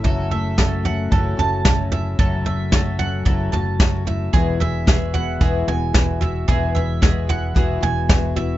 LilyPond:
<<
  \new Staff \with { instrumentName = "Mandolin" } { \time 4/4 \key e \major \tempo 4 = 112 a'8 e''8 a'8 fis''8 a'8 a''4 e''8 | a'8 e''8 a'8 fis''8 a'8 a''4 e''8 | gis'8 e''8 gis'8 fis''8 gis'8 gis''4 e''8 | gis'8 e''8 gis'8 fis''8 gis'8 gis''4 e''8 | }
  \new Staff \with { instrumentName = "Steel-string acoustic guitar" } { \time 4/4 \key e \major << { e'8 a8 cis'4 e'4 cis'8 e'8~ | e'8 a8 cis'4 e'4 cis'8 e'8~ | e'8 gis8 b4 fis'4 b8 fis'8 | r8 gis8 b4 fis'4 b8 fis'8 | } \\ { fis,4. fis4 cis4. | fis,4. fis4 cis4. | e,4. e4 b,4. | e,4. e4 b,4. | } >> }
  \new Staff \with { instrumentName = "Twelve-string acoustic guitar" } { \time 4/4 \key e \major <fis, e fis a cis' fis'>8 <fis a cis' fis'>8 <fis a cis' fis'>8 <fis a cis' fis'>8 <fis, e fis a cis' fis'>8 <fis a cis' fis'>8 <fis a cis' fis'>8 <fis a cis' fis'>8 | <fis, e fis a cis' fis'>8 <fis a cis' fis'>8 <fis a cis' fis'>8 <fis a cis' fis'>8 <fis, e fis a cis' fis'>8 <fis a cis' fis'>8 <fis a cis' fis'>8 <fis a cis' fis'>8 | <e gis b e' fis'>8 <b e' fis'>8 <gis b e' fis'>8 <b e' fis'>8 <e gis b e' fis'>8 <b e' fis'>8 <gis b e' fis'>8 <b e' fis'>8 | <e gis b e' fis'>8 <b e' fis'>8 <gis b e' fis'>8 <b e' fis'>8 <e gis b e' fis'>8 <b e' fis'>8 <gis b e' fis'>8 <b e' fis'>8 | }
  \new Staff \with { instrumentName = "Fingered electric bass" } { \clef bass \time 4/4 \key e \major fis,,2 fis,,8 fis,,4. | fis,,2 fis,,8 fis,,4. | e,,2 e,,8 e,,4. | e,,2 e,,8 e,,4. | }
  \new DrumStaff \with { instrumentName = "Drums" } \drummode { \time 4/4 <bd tomfh>8 tomfh8 <bd sn tomfh>8 tomfh8 <bd tomfh>8 tomfh8 <bd sn tomfh>8 tomfh8 | <bd tomfh>8 tomfh8 <bd sn tomfh>8 tomfh8 <bd tomfh>8 tomfh8 <bd sn tomfh>8 tomfh8 | <bd tomfh>8 tomfh8 <bd sn tomfh>8 tomfh8 <bd tomfh>8 tomfh8 <bd sn tomfh>8 tomfh8 | <bd tomfh>8 tomfh8 <bd sn tomfh>8 tomfh8 <bd tomfh>8 tomfh8 <bd sn tomfh>8 tomfh8 | }
>>